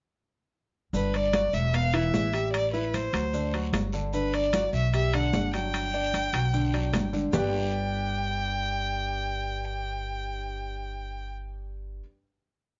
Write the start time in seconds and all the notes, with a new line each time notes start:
0.93 G1 D3 D4 B4, high conga, long guiro, maracas
1.14 D5, high conga, high timbale, maracas
1.33 F#3 F#4, high conga, high timbale, low timbale, short guiro, maracas
1.53 E1 E5, high conga, short guiro, maracas
1.73 B3 B4 F5, high conga, high timbale, long guiro, maracas
1.93 E3 E4 E5, high conga, high timbale, maracas
2.13 A1, high conga, low timbale, short guiro, maracas
2.33 G3 G4, high conga, high timbale, short guiro, maracas
2.53 D5, high conga, high timbale, long guiro, maracas
2.72 E4 B4 E5, high conga, maracas
2.93 C5, high conga, high timbale, low timbale, short guiro, maracas
3.13 D2 F#3 F#4, high conga, high timbale, short guiro, maracas
3.33 D3 D4, high conga, long guiro, maracas
3.53 F#3 F#4, high conga, high timbale, maracas
3.72 G1, high conga, high timbale, low timbale, short guiro, maracas
3.92 D3 D4, short guiro, maracas
4.13 D3 D4 B4, high conga, long guiro, maracas
4.33 D5, high conga, high timbale, maracas
4.53 F#3 F#4, high conga, high timbale, low timbale, short guiro, maracas
4.73 B1 E5, high conga, short guiro, maracas
4.93 G3 G4 E5, high conga, high timbale, long guiro, maracas
5.13 D3 D4 F#5, high conga, high timbale, maracas
5.33 G1, high conga, low timbale, short guiro, maracas
5.53 F#3 D4 G5, high conga, high timbale, short guiro, maracas
5.73 high conga, high timbale, long guiro, maracas
5.94 D4 D5, high conga, maracas
6.13 high conga, high timbale, low timbale, short guiro, maracas
6.33 B1 F#3 F#4, high conga, high timbale, short guiro, maracas
6.53 D3 D4, high conga, long guiro, maracas
6.74 F#3 D4, high conga, high timbale, maracas
6.93 G1, high conga, high timbale, low timbale, short guiro, maracas
7.13 D3 D4, high conga, short guiro, maracas
7.33 G1 G3 D4 G4 B4 D5 G5, low conga, low timbale, long guiro, maracas